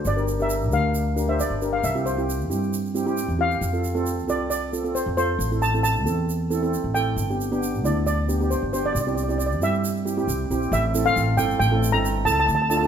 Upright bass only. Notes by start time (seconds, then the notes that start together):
0.05 G1
0.72 D2
1.50 G1
1.84 C2
2.50 G2
3.28 E2
3.61 F2
4.28 C2
5.06 F2
5.39 A1
6.06 E2
6.84 A1
7.16 G1
7.84 D2
8.62 G1
8.95 C2
9.61 G2
10.28 C2
10.50 A#1
10.72 A1
11.16 A1
11.38 G1
11.60 A1
11.94 G1
12.25 C#2
12.49 D2